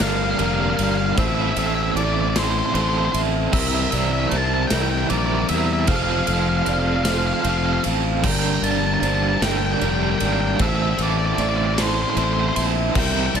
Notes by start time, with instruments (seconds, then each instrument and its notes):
0.00 fingered electric bass G1, overdriven electric guitar G2 D3 G3 A#3 D4 A#4, vibraphone A#4, lead electric guitar F5, snare, ride
0.09 lead electric guitar F5
0.16 lead electric guitar F5
0.24 lead electric guitar F5
0.31 lead electric guitar F5
0.39 fingered electric bass F1, overdriven electric guitar G3 A#3 D4 A#4, lead electric guitar F5, ride
0.46 lead electric guitar F5
0.54 lead electric guitar F5
0.61 lead electric guitar F5
0.70 lead electric guitar F5
0.77 fingered electric bass G1, overdriven electric guitar G3 A#3 D4 A#4, lead electric guitar F5, ride
0.84 lead electric guitar F5
0.91 lead electric guitar F5
0.97 lead electric guitar F5
1.06 lead electric guitar F5
1.17 fingered electric bass A1, overdriven electric guitar A2 E3 A3 C4 E4 A4, vibraphone C5, lead electric guitar E5, kick, ride
1.28 lead electric guitar E5
1.35 lead electric guitar E5
1.42 lead electric guitar E5
1.51 lead electric guitar E5
1.56 fingered electric bass A1, overdriven electric guitar A3 C4 E4 A4, lead electric guitar E5, ride
1.67 lead electric guitar E5
1.75 lead electric guitar E5
1.83 lead electric guitar E5
1.91 fingered electric bass A1, lead electric guitar E5
1.96 overdriven electric guitar A3 C4 E4 A4, vibraphone D5, lead electric guitar D5, ride
2.04 lead electric guitar D5
2.13 lead electric guitar D5
2.21 lead electric guitar D5
2.30 lead electric guitar D5
2.35 overdriven electric guitar A2 E3 A3 C4 E4 A4, vibraphone C5, lead electric guitar C5, snare, ride
2.43 lead electric guitar C5
2.50 lead electric guitar C5
2.59 lead electric guitar C5
2.66 lead electric guitar C5
2.74 fingered electric bass A1, overdriven electric guitar A3 C4 E4 A4, lead electric guitar C5, ride
2.81 lead electric guitar C5
2.89 lead electric guitar C5
2.98 lead electric guitar C5
3.05 lead electric guitar C5
3.12 fingered electric bass A1, overdriven electric guitar A3 C4 E4 A4, lead electric guitar C5, vibraphone E5, ride
3.52 fingered electric bass C2, overdriven electric guitar C3 E3 G3 C4 E4 A#4, vibraphone A#4, lead electric guitar E5, kick, crash
3.59 lead electric guitar E5
3.69 lead electric guitar E5
3.75 lead electric guitar E5
3.82 lead electric guitar E5
3.91 fingered electric bass C2, overdriven electric guitar G3 C4 E4 A#4, vibraphone D5, lead electric guitar E5, ride
3.98 lead electric guitar E5
4.05 lead electric guitar E5
4.13 lead electric guitar E5
4.20 lead electric guitar E5
4.27 overdriven electric guitar G3, lead electric guitar E5 A5
4.31 fingered electric bass C2, overdriven electric guitar C4 E4 A#4, vibraphone C5, ride
4.38 lead electric guitar A5
4.46 lead electric guitar A5
4.54 lead electric guitar A5
4.63 lead electric guitar A5
4.67 fingered electric bass C2, overdriven electric guitar E4 A#4, vibraphone A#4, lead electric guitar G5, snare, ride
4.72 overdriven electric guitar C3 E3 G3 C4, lead electric guitar G5
4.82 lead electric guitar G5
4.91 lead electric guitar G5
4.98 lead electric guitar G5
5.10 fingered electric bass A#1, overdriven electric guitar G3 C4 E4 A#4, lead electric guitar D5, ride
5.18 lead electric guitar D5
5.26 lead electric guitar D5
5.35 lead electric guitar D5
5.42 lead electric guitar D5
5.49 fingered electric bass E2, overdriven electric guitar G3 C4 E4 A#4, lead electric guitar E5, ride
5.57 lead electric guitar E5
5.66 lead electric guitar E5
5.73 lead electric guitar E5
5.81 lead electric guitar E5
5.87 fingered electric bass F1, overdriven electric guitar F3 A3 C4 F4, vibraphone C5, lead electric guitar F5, kick, ride
5.91 overdriven electric guitar A4
5.96 lead electric guitar F5
6.03 lead electric guitar F5
6.10 lead electric guitar F5
6.19 lead electric guitar F5
6.27 fingered electric bass F1, overdriven electric guitar F4 A4, lead electric guitar F5, ride
6.31 overdriven electric guitar C4, lead electric guitar F5
6.42 lead electric guitar F5
6.49 lead electric guitar F5
6.57 lead electric guitar F5
6.66 fingered electric bass F1, overdriven electric guitar A3 C4 F4 A4, vibraphone D5, lead electric guitar F5, ride
6.73 lead electric guitar F5
6.80 lead electric guitar F5
6.87 lead electric guitar F5
6.96 lead electric guitar F5
7.04 overdriven electric guitar A3 C4 F4 A4, vibraphone C5, lead electric guitar F5, snare, ride
7.08 overdriven electric guitar F3
7.12 lead electric guitar F5
7.18 lead electric guitar F5
7.27 lead electric guitar F5
7.34 lead electric guitar F5
7.42 fingered electric bass F1, lead electric guitar F5, ride
7.46 overdriven electric guitar A3 C4 F4 A4, lead electric guitar F5
7.58 lead electric guitar F5
7.66 lead electric guitar F5
7.73 lead electric guitar F5
7.84 fingered electric bass A1, overdriven electric guitar C4 F4 A4, vibraphone F5, ride
8.24 fingered electric bass G1, overdriven electric guitar G2 D3 G3 A#3 D4 A#4, ambient pad G4 A#4 D5 G5, vibraphone A#4, lead electric guitar G5, kick, crash
8.32 lead electric guitar G5
8.39 lead electric guitar G5
8.46 lead electric guitar G5
8.54 lead electric guitar G5
8.62 fingered electric bass G1, overdriven electric guitar G3 A#3 D4 A#4, vibraphone D5, lead electric guitar A5, ride
8.71 lead electric guitar A5
8.77 lead electric guitar A5
8.86 lead electric guitar A5
8.94 lead electric guitar A5
9.00 fingered electric bass G1, overdriven electric guitar G3 A#3 D4 A#4, vibraphone C5, lead electric guitar A5, ride
9.08 lead electric guitar A5
9.15 lead electric guitar A5
9.23 lead electric guitar A5
9.28 lead electric guitar A5
9.37 vibraphone A#4, lead electric guitar A5
9.41 fingered electric bass G1, overdriven electric guitar G3 A#3 D4 A#4, lead electric guitar G5, snare, ride
9.45 overdriven electric guitar G2 D3
9.50 lead electric guitar G5
9.57 lead electric guitar G5
9.66 lead electric guitar G5
9.73 lead electric guitar G5
9.80 fingered electric bass F1, overdriven electric guitar G3 A#3 D4, lead electric guitar G5, ride
9.84 overdriven electric guitar A#4
9.89 lead electric guitar G5
9.95 lead electric guitar G5
10.03 lead electric guitar G5
10.11 lead electric guitar G5
10.18 fingered electric bass G#1, overdriven electric guitar D4 A#4, lead electric guitar G5, ride
10.23 overdriven electric guitar G3 A#3, lead electric guitar G5
10.33 lead electric guitar G5
10.42 lead electric guitar G5
10.48 lead electric guitar G5
10.57 fingered electric bass A1, overdriven electric guitar A2, vibraphone C5, ambient pad C5 E5, lead electric guitar G5, kick, ride
10.61 overdriven electric guitar E3 A3 C4 E4 A4, ambient pad A4 C6, lead electric guitar E5
10.69 lead electric guitar E5
10.75 lead electric guitar E5
10.82 lead electric guitar E5
10.91 lead electric guitar E5
10.99 fingered electric bass A1, overdriven electric guitar C4 E4 A4, lead electric guitar D5, ride
11.03 overdriven electric guitar A3
11.09 lead electric guitar D5
11.18 lead electric guitar D5
11.26 lead electric guitar D5
11.34 fingered electric bass A1, overdriven electric guitar A3, lead electric guitar D5, vibraphone D5, ride
11.39 overdriven electric guitar C4 E4 A4, lead electric guitar D5
11.49 lead electric guitar D5
11.57 lead electric guitar D5
11.66 lead electric guitar D5
11.74 overdriven electric guitar A4, vibraphone C5, lead electric guitar D5, snare, ride
11.79 overdriven electric guitar A2 E3 A3 C4 E4, lead electric guitar C5
11.88 lead electric guitar C5
11.94 lead electric guitar C5
12.02 lead electric guitar C5
12.10 lead electric guitar C5
12.16 fingered electric bass A1, overdriven electric guitar A3 C4 E4, lead electric guitar C5, ride
12.20 overdriven electric guitar A4, lead electric guitar C5
12.33 lead electric guitar C5
12.40 lead electric guitar C5
12.49 lead electric guitar C5
12.56 fingered electric bass A#1, overdriven electric guitar C4 E4 A4, lead electric guitar C5, vibraphone E5, ride
12.60 overdriven electric guitar A3
12.94 fingered electric bass C2, overdriven electric guitar C3 E3, vibraphone A#4, ambient pad A#4 G5 C6, kick, crash
12.98 overdriven electric guitar G3 C4 E4 A#4, lead electric guitar G5
13.06 lead electric guitar G5
13.13 lead electric guitar G5
13.20 lead electric guitar G5
13.26 lead electric guitar G5
13.34 fingered electric bass C2, overdriven electric guitar G3 C4 E4 A#4, vibraphone D5, lead electric guitar A5, ride